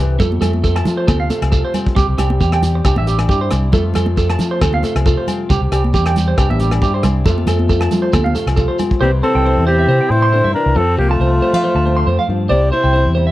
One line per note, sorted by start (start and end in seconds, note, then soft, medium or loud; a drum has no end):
0.00 0.18 C2 medium
0.00 0.17 G2 medium
0.00 0.20 E3 medium
0.00 0.20 G3 medium
0.00 0.65 C4 medium
0.00 0.18 G4 medium
0.20 0.39 F2 medium
0.20 1.94 F2 medium
0.20 0.30 A4 medium
0.20 kick medium
0.20 low conga medium
0.20 shekere medium
0.32 high conga medium
0.41 0.81 F2 medium
0.41 1.30 A3 soft
0.41 0.51 A4 medium
0.41 cross-stick medium
0.41 closed hi-hat soft
0.41 low conga medium
0.41 low agogo medium
0.41 shekere medium
0.53 high conga medium
0.64 1.75 C4 medium
0.64 0.73 A4 medium
0.64 kick medium
0.64 shekere medium
0.76 0.84 A5 medium
0.76 cross-stick medium
0.76 low agogo medium
0.85 1.06 F3 medium
0.85 1.51 F4 medium
0.85 closed hi-hat soft
0.85 low conga medium
0.85 shekere medium
0.97 1.06 C5 medium
1.07 1.28 D2 medium
1.07 1.94 C3 medium
1.07 1.17 A4 medium
1.07 kick medium
1.07 cross-stick medium
1.07 high conga medium
1.07 low agogo medium
1.07 shekere medium
1.20 1.28 F5 medium
1.30 1.94 A3 medium
1.30 1.40 A4 medium
1.30 closed hi-hat soft
1.30 high conga medium
1.30 shekere medium
1.42 1.62 C2 medium
1.42 cross-stick medium
1.42 low agogo medium
1.52 1.94 F4 medium
1.52 1.62 A4 medium
1.52 kick medium
1.52 shekere medium
1.65 1.73 C5 medium
1.74 2.41 C4 medium
1.74 closed hi-hat soft
1.74 low conga medium
1.74 low agogo medium
1.74 shekere medium
1.87 kick medium
1.96 2.07 C2 medium
1.96 2.85 C3 medium
1.96 2.06 G4 medium
1.96 kick medium
1.96 low conga medium
1.96 shekere medium
2.08 2.17 C2 medium
2.18 2.38 C2 medium
2.18 3.05 G3 medium
2.18 2.28 G4 medium
2.18 cross-stick medium
2.18 closed hi-hat soft
2.18 low conga medium
2.18 low agogo medium
2.18 shekere medium
2.30 high conga medium
2.41 2.80 E2 medium
2.41 3.50 C4 medium
2.41 2.51 G4 medium
2.41 kick medium
2.41 shekere medium
2.52 2.61 G5 medium
2.52 cross-stick medium
2.52 low agogo medium
2.63 3.28 G4 medium
2.63 closed hi-hat medium
2.63 low conga medium
2.63 shekere medium
2.75 muted clean electric guitar stroke medium
2.85 2.96 C2 medium
2.85 3.71 G2 medium
2.85 2.95 G4 medium
2.85 kick medium
2.85 cross-stick medium
2.85 low agogo medium
2.85 shekere medium
2.96 3.26 A1 medium
2.96 3.06 E5 medium
2.96 high conga medium
3.06 3.73 G3 medium
3.06 3.17 G4 medium
3.06 closed hi-hat soft
3.06 shekere medium
3.19 cross-stick medium
3.19 low agogo medium
3.29 3.49 G2 medium
3.29 3.73 E4 medium
3.29 3.39 G4 medium
3.29 kick medium
3.29 shekere medium
3.41 3.49 C5 medium
3.50 3.71 C2 medium
3.50 3.74 C4 medium
3.50 cross-stick medium
3.50 closed hi-hat soft
3.50 low conga medium
3.50 low agogo medium
3.50 shekere medium
3.72 5.47 F2 medium
3.72 3.93 F2 medium
3.72 5.47 F3 medium
3.72 3.94 A3 medium
3.72 4.16 C4 medium
3.72 4.38 F4 medium
3.72 3.83 A4 medium
3.72 kick medium
3.72 low conga medium
3.72 shekere medium
3.94 4.35 F2 medium
3.94 4.82 A3 medium
3.94 4.05 A4 medium
3.94 cross-stick medium
3.94 closed hi-hat soft
3.94 low conga medium
3.94 low agogo medium
3.94 shekere medium
4.06 high conga medium
4.17 5.28 C4 medium
4.17 4.27 A4 medium
4.17 kick medium
4.17 shekere medium
4.30 4.38 A5 medium
4.30 cross-stick medium
4.30 low agogo medium
4.39 4.59 F3 medium
4.39 5.04 F4 medium
4.39 closed hi-hat soft
4.39 low conga medium
4.39 shekere medium
4.51 4.59 C5 medium
4.60 4.81 D2 medium
4.60 5.46 C3 medium
4.60 4.72 A4 medium
4.60 kick medium
4.60 cross-stick medium
4.60 low agogo medium
4.60 shekere medium
4.73 4.82 F5 medium
4.73 high conga medium
4.83 5.47 A3 medium
4.83 4.93 A4 medium
4.83 closed hi-hat soft
4.83 high conga medium
4.83 shekere medium
4.95 5.15 C2 medium
4.95 cross-stick medium
4.95 low agogo medium
5.06 5.47 F4 medium
5.06 5.16 A4 medium
5.06 kick medium
5.06 shekere medium
5.17 5.26 C5 medium
5.27 5.94 C4 medium
5.27 closed hi-hat soft
5.27 low conga medium
5.27 low agogo medium
5.27 shekere medium
5.50 5.60 C2 medium
5.50 6.38 C3 medium
5.50 5.60 G4 medium
5.50 kick medium
5.50 low conga soft
5.50 shekere medium
5.61 5.70 C2 medium
5.72 5.91 C2 medium
5.72 6.60 G3 medium
5.72 5.82 G4 medium
5.72 cross-stick medium
5.72 closed hi-hat soft
5.72 low agogo medium
5.72 shekere medium
5.84 high conga medium
5.94 6.33 E2 medium
5.94 7.05 C4 medium
5.94 6.04 G4 medium
5.94 kick medium
5.94 shekere medium
6.06 6.14 G5 medium
6.06 cross-stick medium
6.06 low agogo medium
6.16 6.83 G4 medium
6.16 closed hi-hat soft
6.16 low conga medium
6.16 shekere medium
6.28 6.36 C5 medium
6.38 6.49 C2 medium
6.38 7.24 G2 medium
6.38 6.48 G4 medium
6.38 kick medium
6.38 cross-stick medium
6.38 low agogo medium
6.38 shekere medium
6.50 6.79 A1 medium
6.50 6.58 E5 medium
6.50 high conga medium
6.60 7.27 G3 medium
6.60 6.70 G4 medium
6.60 closed hi-hat medium
6.60 high conga medium
6.60 shekere medium
6.71 cross-stick medium
6.71 low agogo medium
6.81 7.01 G2 medium
6.81 7.26 E4 medium
6.81 6.92 G4 medium
6.81 kick medium
6.81 shekere medium
6.94 7.02 C5 medium
7.03 7.23 C2 medium
7.03 7.28 C4 medium
7.03 cross-stick medium
7.03 closed hi-hat soft
7.03 low conga medium
7.03 low agogo medium
7.03 shekere medium
7.26 7.45 F2 loud
7.26 8.99 F2 medium
7.26 9.00 F3 medium
7.26 7.47 A3 medium
7.26 7.69 C4 medium
7.26 7.91 F4 medium
7.26 7.36 A4 medium
7.26 kick medium
7.26 low conga medium
7.26 shekere medium
7.38 high conga medium
7.47 7.87 F2 medium
7.47 8.34 A3 medium
7.47 7.58 A4 medium
7.47 cross-stick medium
7.47 closed hi-hat soft
7.47 low conga medium
7.47 low agogo medium
7.47 shekere medium
7.59 high conga medium
7.69 8.80 C4 medium
7.69 7.79 A4 medium
7.69 kick medium
7.69 shekere medium
7.81 7.89 A5 medium
7.81 cross-stick medium
7.81 low agogo medium
7.91 8.11 F3 medium
7.91 8.57 F4 medium
7.91 closed hi-hat soft
7.91 low conga medium
7.91 shekere medium
8.02 8.11 C5 medium
8.12 8.33 D2 medium
8.12 8.98 C3 medium
8.12 8.23 A4 medium
8.12 kick medium
8.12 cross-stick medium
8.12 high conga medium
8.12 low agogo medium
8.12 shekere medium
8.24 8.33 F5 medium
8.24 high conga medium
8.35 8.99 A3 medium
8.35 8.45 A4 medium
8.35 closed hi-hat soft
8.35 high conga medium
8.35 shekere medium
8.47 8.67 C2 medium
8.47 cross-stick medium
8.47 low agogo medium
8.56 9.00 F4 medium
8.56 8.67 A4 medium
8.56 kick medium
8.56 shekere medium
8.68 8.77 C5 medium
8.79 9.00 C4 medium
8.79 closed hi-hat soft
8.79 low conga medium
8.79 low agogo medium
8.79 shekere medium
8.91 kick medium
9.01 9.21 C2 medium
9.01 10.74 C3 medium
9.01 10.33 E3 medium
9.01 9.67 G3 medium
9.01 9.12 C4 medium
9.01 9.25 C4 medium
9.01 9.45 E4 medium
9.01 9.11 G4 medium
9.01 9.11 C5 medium
9.23 9.64 C4 medium
9.23 9.90 C4 medium
9.23 9.64 A4 medium
9.23 9.33 C5 medium
9.35 9.55 C2 loud
9.35 9.43 G5 medium
9.46 10.10 E4 medium
9.46 9.55 C5 medium
9.57 9.85 E2 medium
9.67 10.77 G3 medium
9.67 10.13 C4 medium
9.67 10.12 G4 loud
9.67 9.77 C5 medium
9.79 9.87 E5 medium
9.88 9.99 C3 loud
9.88 10.98 C4 medium
9.88 9.98 C5 medium
10.01 10.09 G5 medium
10.10 10.40 A2 medium
10.10 10.77 E4 medium
10.10 10.55 E4 medium
10.10 10.53 C5 medium
10.22 10.31 C6 medium
10.32 10.53 D3 medium
10.32 10.42 C5 medium
10.44 10.53 G2 medium
10.44 10.53 E5 medium
10.54 10.76 E3 medium
10.54 10.80 D4 medium
10.54 10.78 A#4 medium
10.66 10.75 C2 medium
10.75 10.95 F2 loud
10.75 12.48 F2 medium
10.75 10.99 C4 medium
10.75 12.49 F4 medium
10.75 10.97 A4 loud
10.75 muted clean electric guitar stroke medium
10.98 11.17 C2 medium
10.98 11.10 A#3 medium
10.98 11.21 C4 medium
10.98 11.09 G4 medium
10.98 muted clean electric guitar stroke medium
11.10 12.26 A3 medium
11.10 12.25 F4 medium
11.10 11.19 A5 medium
11.20 11.39 C2 medium
11.20 11.65 C4 medium
11.20 11.30 C5 medium
11.42 11.54 G3 medium
11.42 11.52 C5 medium
11.53 11.62 F3 medium
11.53 12.51 A3 medium
11.53 11.62 F5 medium
11.64 11.73 C5 medium
11.64 muted steel-string acoustic guitar stroke medium
11.75 12.03 D2 medium
11.75 11.84 A5 medium
11.85 12.08 C4 medium
11.85 11.95 C5 medium
11.97 12.05 C6 medium
12.06 12.17 F2 medium
12.06 12.73 C4 medium
12.06 12.17 C5 medium
12.19 12.27 F5 medium
12.28 12.48 G2 medium
12.28 12.49 F3 medium
12.49 12.70 C2 medium
12.49 13.31 C3 medium
12.49 12.94 E4 medium
12.49 12.71 G4 medium
12.49 12.60 C5 medium
12.49 12.70 D5 loud
12.71 13.31 C4 medium
12.71 13.13 E4 medium
12.71 13.12 C5 medium
12.71 12.82 C5 medium
12.84 13.03 C2 medium
12.84 12.92 G5 medium
12.93 13.31 E4 medium
12.93 13.03 C5 medium
13.06 13.31 E2 medium
13.15 13.31 G3 medium
13.15 13.25 C5 medium
13.27 13.31 E5 medium